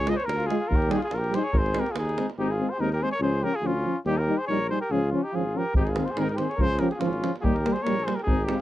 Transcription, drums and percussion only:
0, 0, Header, 1, 2, 480
1, 0, Start_track
1, 0, Key_signature, -4, "major"
1, 0, Tempo, 421053
1, 803, Time_signature, 2, 2, 24, 8
1, 9819, End_track
2, 0, Start_track
2, 0, Title_t, "Davul"
2, 79, Note_on_c, 9, 37, 75
2, 193, Note_off_c, 9, 37, 0
2, 226, Note_on_c, 9, 37, 29
2, 334, Note_off_c, 9, 37, 0
2, 334, Note_on_c, 9, 37, 69
2, 448, Note_off_c, 9, 37, 0
2, 458, Note_on_c, 9, 37, 27
2, 572, Note_off_c, 9, 37, 0
2, 575, Note_on_c, 9, 37, 53
2, 689, Note_off_c, 9, 37, 0
2, 819, Note_on_c, 9, 43, 88
2, 933, Note_off_c, 9, 43, 0
2, 936, Note_on_c, 9, 37, 25
2, 1038, Note_off_c, 9, 37, 0
2, 1038, Note_on_c, 9, 37, 69
2, 1152, Note_off_c, 9, 37, 0
2, 1167, Note_on_c, 9, 37, 28
2, 1267, Note_off_c, 9, 37, 0
2, 1267, Note_on_c, 9, 37, 57
2, 1381, Note_off_c, 9, 37, 0
2, 1414, Note_on_c, 9, 37, 25
2, 1528, Note_off_c, 9, 37, 0
2, 1528, Note_on_c, 9, 37, 55
2, 1642, Note_off_c, 9, 37, 0
2, 1748, Note_on_c, 9, 43, 89
2, 1862, Note_off_c, 9, 43, 0
2, 1893, Note_on_c, 9, 37, 25
2, 1989, Note_off_c, 9, 37, 0
2, 1989, Note_on_c, 9, 37, 71
2, 2103, Note_off_c, 9, 37, 0
2, 2124, Note_on_c, 9, 37, 29
2, 2230, Note_off_c, 9, 37, 0
2, 2230, Note_on_c, 9, 37, 73
2, 2344, Note_off_c, 9, 37, 0
2, 2385, Note_on_c, 9, 37, 32
2, 2484, Note_off_c, 9, 37, 0
2, 2484, Note_on_c, 9, 37, 62
2, 2598, Note_off_c, 9, 37, 0
2, 2617, Note_on_c, 9, 37, 30
2, 2731, Note_off_c, 9, 37, 0
2, 6548, Note_on_c, 9, 43, 107
2, 6662, Note_off_c, 9, 43, 0
2, 6689, Note_on_c, 9, 37, 33
2, 6792, Note_off_c, 9, 37, 0
2, 6792, Note_on_c, 9, 37, 76
2, 6906, Note_off_c, 9, 37, 0
2, 6927, Note_on_c, 9, 37, 35
2, 7032, Note_off_c, 9, 37, 0
2, 7032, Note_on_c, 9, 37, 66
2, 7146, Note_off_c, 9, 37, 0
2, 7174, Note_on_c, 9, 37, 28
2, 7276, Note_off_c, 9, 37, 0
2, 7276, Note_on_c, 9, 37, 57
2, 7390, Note_off_c, 9, 37, 0
2, 7423, Note_on_c, 9, 37, 25
2, 7506, Note_on_c, 9, 43, 81
2, 7537, Note_off_c, 9, 37, 0
2, 7620, Note_off_c, 9, 43, 0
2, 7736, Note_on_c, 9, 37, 57
2, 7850, Note_off_c, 9, 37, 0
2, 7877, Note_on_c, 9, 37, 29
2, 7988, Note_off_c, 9, 37, 0
2, 7988, Note_on_c, 9, 37, 68
2, 8102, Note_off_c, 9, 37, 0
2, 8127, Note_on_c, 9, 37, 25
2, 8241, Note_off_c, 9, 37, 0
2, 8250, Note_on_c, 9, 37, 60
2, 8364, Note_off_c, 9, 37, 0
2, 8386, Note_on_c, 9, 37, 26
2, 8482, Note_on_c, 9, 43, 82
2, 8500, Note_off_c, 9, 37, 0
2, 8596, Note_off_c, 9, 43, 0
2, 8618, Note_on_c, 9, 37, 27
2, 8731, Note_off_c, 9, 37, 0
2, 8731, Note_on_c, 9, 37, 72
2, 8845, Note_off_c, 9, 37, 0
2, 8845, Note_on_c, 9, 37, 28
2, 8959, Note_off_c, 9, 37, 0
2, 8967, Note_on_c, 9, 37, 66
2, 9081, Note_off_c, 9, 37, 0
2, 9116, Note_on_c, 9, 37, 26
2, 9210, Note_off_c, 9, 37, 0
2, 9210, Note_on_c, 9, 37, 67
2, 9324, Note_off_c, 9, 37, 0
2, 9341, Note_on_c, 9, 37, 22
2, 9433, Note_on_c, 9, 43, 81
2, 9455, Note_off_c, 9, 37, 0
2, 9547, Note_off_c, 9, 43, 0
2, 9673, Note_on_c, 9, 37, 71
2, 9787, Note_off_c, 9, 37, 0
2, 9819, End_track
0, 0, End_of_file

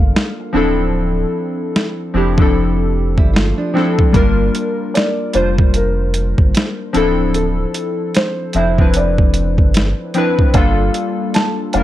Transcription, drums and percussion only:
0, 0, Header, 1, 2, 480
1, 0, Start_track
1, 0, Key_signature, -2, "minor"
1, 0, Tempo, 800000
1, 566, Time_signature, 4, 2, 24, 8
1, 7100, End_track
2, 0, Start_track
2, 0, Title_t, "Drums"
2, 98, Note_on_c, 9, 38, 108
2, 158, Note_off_c, 9, 38, 0
2, 1056, Note_on_c, 9, 38, 89
2, 1116, Note_off_c, 9, 38, 0
2, 1427, Note_on_c, 9, 36, 90
2, 1487, Note_off_c, 9, 36, 0
2, 1906, Note_on_c, 9, 36, 79
2, 1966, Note_off_c, 9, 36, 0
2, 2018, Note_on_c, 9, 38, 109
2, 2078, Note_off_c, 9, 38, 0
2, 2261, Note_on_c, 9, 38, 30
2, 2321, Note_off_c, 9, 38, 0
2, 2392, Note_on_c, 9, 36, 89
2, 2452, Note_off_c, 9, 36, 0
2, 2485, Note_on_c, 9, 42, 64
2, 2486, Note_on_c, 9, 36, 101
2, 2545, Note_off_c, 9, 42, 0
2, 2546, Note_off_c, 9, 36, 0
2, 2728, Note_on_c, 9, 42, 62
2, 2788, Note_off_c, 9, 42, 0
2, 2971, Note_on_c, 9, 42, 71
2, 2984, Note_on_c, 9, 38, 93
2, 3031, Note_off_c, 9, 42, 0
2, 3044, Note_off_c, 9, 38, 0
2, 3201, Note_on_c, 9, 42, 58
2, 3261, Note_off_c, 9, 42, 0
2, 3351, Note_on_c, 9, 36, 97
2, 3411, Note_off_c, 9, 36, 0
2, 3443, Note_on_c, 9, 42, 79
2, 3503, Note_off_c, 9, 42, 0
2, 3683, Note_on_c, 9, 42, 82
2, 3743, Note_off_c, 9, 42, 0
2, 3829, Note_on_c, 9, 36, 84
2, 3889, Note_off_c, 9, 36, 0
2, 3927, Note_on_c, 9, 42, 74
2, 3943, Note_on_c, 9, 38, 113
2, 3987, Note_off_c, 9, 42, 0
2, 4003, Note_off_c, 9, 38, 0
2, 4167, Note_on_c, 9, 42, 50
2, 4227, Note_off_c, 9, 42, 0
2, 4406, Note_on_c, 9, 42, 67
2, 4466, Note_off_c, 9, 42, 0
2, 4646, Note_on_c, 9, 42, 64
2, 4706, Note_off_c, 9, 42, 0
2, 4887, Note_on_c, 9, 42, 66
2, 4899, Note_on_c, 9, 38, 102
2, 4947, Note_off_c, 9, 42, 0
2, 4959, Note_off_c, 9, 38, 0
2, 5119, Note_on_c, 9, 42, 61
2, 5179, Note_off_c, 9, 42, 0
2, 5271, Note_on_c, 9, 36, 84
2, 5331, Note_off_c, 9, 36, 0
2, 5362, Note_on_c, 9, 42, 79
2, 5422, Note_off_c, 9, 42, 0
2, 5510, Note_on_c, 9, 36, 80
2, 5570, Note_off_c, 9, 36, 0
2, 5602, Note_on_c, 9, 42, 78
2, 5662, Note_off_c, 9, 42, 0
2, 5749, Note_on_c, 9, 36, 80
2, 5809, Note_off_c, 9, 36, 0
2, 5846, Note_on_c, 9, 42, 74
2, 5861, Note_on_c, 9, 38, 109
2, 5906, Note_off_c, 9, 42, 0
2, 5921, Note_off_c, 9, 38, 0
2, 6084, Note_on_c, 9, 42, 54
2, 6144, Note_off_c, 9, 42, 0
2, 6232, Note_on_c, 9, 36, 89
2, 6292, Note_off_c, 9, 36, 0
2, 6322, Note_on_c, 9, 42, 69
2, 6325, Note_on_c, 9, 36, 109
2, 6382, Note_off_c, 9, 42, 0
2, 6385, Note_off_c, 9, 36, 0
2, 6565, Note_on_c, 9, 42, 60
2, 6625, Note_off_c, 9, 42, 0
2, 6805, Note_on_c, 9, 42, 69
2, 6817, Note_on_c, 9, 38, 104
2, 6865, Note_off_c, 9, 42, 0
2, 6877, Note_off_c, 9, 38, 0
2, 7038, Note_on_c, 9, 42, 57
2, 7098, Note_off_c, 9, 42, 0
2, 7100, End_track
0, 0, End_of_file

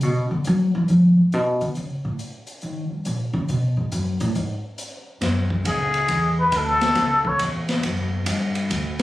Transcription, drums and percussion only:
0, 0, Header, 1, 2, 480
1, 0, Start_track
1, 0, Key_signature, 3, "minor"
1, 0, Tempo, 434153
1, 27, Time_signature, 4, 2, 24, 8
1, 9975, End_track
2, 0, Start_track
2, 0, Title_t, "Drums"
2, 10, Note_on_c, 9, 42, 42
2, 120, Note_off_c, 9, 42, 0
2, 491, Note_on_c, 9, 42, 51
2, 601, Note_off_c, 9, 42, 0
2, 974, Note_on_c, 9, 42, 39
2, 1085, Note_off_c, 9, 42, 0
2, 1461, Note_on_c, 9, 42, 53
2, 1572, Note_off_c, 9, 42, 0
2, 1778, Note_on_c, 9, 42, 46
2, 1889, Note_off_c, 9, 42, 0
2, 1937, Note_on_c, 9, 42, 39
2, 2047, Note_off_c, 9, 42, 0
2, 2421, Note_on_c, 9, 42, 52
2, 2532, Note_off_c, 9, 42, 0
2, 2728, Note_on_c, 9, 42, 50
2, 2839, Note_off_c, 9, 42, 0
2, 2891, Note_on_c, 9, 42, 43
2, 3001, Note_off_c, 9, 42, 0
2, 3373, Note_on_c, 9, 42, 57
2, 3483, Note_off_c, 9, 42, 0
2, 3853, Note_on_c, 9, 42, 44
2, 3963, Note_off_c, 9, 42, 0
2, 4330, Note_on_c, 9, 42, 52
2, 4440, Note_off_c, 9, 42, 0
2, 4645, Note_on_c, 9, 42, 47
2, 4756, Note_off_c, 9, 42, 0
2, 4810, Note_on_c, 9, 42, 42
2, 4921, Note_off_c, 9, 42, 0
2, 5286, Note_on_c, 9, 42, 55
2, 5396, Note_off_c, 9, 42, 0
2, 5765, Note_on_c, 9, 51, 51
2, 5767, Note_on_c, 9, 36, 17
2, 5768, Note_on_c, 9, 38, 34
2, 5876, Note_off_c, 9, 51, 0
2, 5877, Note_off_c, 9, 36, 0
2, 5879, Note_off_c, 9, 38, 0
2, 6085, Note_on_c, 9, 36, 51
2, 6196, Note_off_c, 9, 36, 0
2, 6248, Note_on_c, 9, 36, 23
2, 6249, Note_on_c, 9, 44, 49
2, 6249, Note_on_c, 9, 51, 65
2, 6358, Note_off_c, 9, 36, 0
2, 6359, Note_off_c, 9, 44, 0
2, 6359, Note_off_c, 9, 51, 0
2, 6565, Note_on_c, 9, 51, 41
2, 6675, Note_off_c, 9, 51, 0
2, 6725, Note_on_c, 9, 51, 55
2, 6727, Note_on_c, 9, 36, 24
2, 6836, Note_off_c, 9, 51, 0
2, 6838, Note_off_c, 9, 36, 0
2, 7207, Note_on_c, 9, 44, 62
2, 7207, Note_on_c, 9, 51, 67
2, 7210, Note_on_c, 9, 36, 22
2, 7318, Note_off_c, 9, 44, 0
2, 7318, Note_off_c, 9, 51, 0
2, 7321, Note_off_c, 9, 36, 0
2, 7532, Note_on_c, 9, 51, 44
2, 7535, Note_on_c, 9, 38, 49
2, 7642, Note_off_c, 9, 51, 0
2, 7646, Note_off_c, 9, 38, 0
2, 7687, Note_on_c, 9, 51, 52
2, 7690, Note_on_c, 9, 38, 34
2, 7693, Note_on_c, 9, 36, 23
2, 7798, Note_off_c, 9, 51, 0
2, 7801, Note_off_c, 9, 38, 0
2, 7803, Note_off_c, 9, 36, 0
2, 8013, Note_on_c, 9, 36, 58
2, 8123, Note_off_c, 9, 36, 0
2, 8173, Note_on_c, 9, 44, 53
2, 8173, Note_on_c, 9, 51, 64
2, 8177, Note_on_c, 9, 36, 21
2, 8283, Note_off_c, 9, 44, 0
2, 8283, Note_off_c, 9, 51, 0
2, 8287, Note_off_c, 9, 36, 0
2, 8497, Note_on_c, 9, 51, 43
2, 8501, Note_on_c, 9, 38, 38
2, 8608, Note_off_c, 9, 51, 0
2, 8611, Note_off_c, 9, 38, 0
2, 8659, Note_on_c, 9, 51, 57
2, 8662, Note_on_c, 9, 36, 15
2, 8770, Note_off_c, 9, 51, 0
2, 8773, Note_off_c, 9, 36, 0
2, 9133, Note_on_c, 9, 44, 62
2, 9133, Note_on_c, 9, 51, 72
2, 9142, Note_on_c, 9, 36, 22
2, 9244, Note_off_c, 9, 44, 0
2, 9244, Note_off_c, 9, 51, 0
2, 9253, Note_off_c, 9, 36, 0
2, 9455, Note_on_c, 9, 51, 43
2, 9565, Note_off_c, 9, 51, 0
2, 9625, Note_on_c, 9, 51, 60
2, 9626, Note_on_c, 9, 36, 20
2, 9735, Note_off_c, 9, 51, 0
2, 9736, Note_off_c, 9, 36, 0
2, 9975, End_track
0, 0, End_of_file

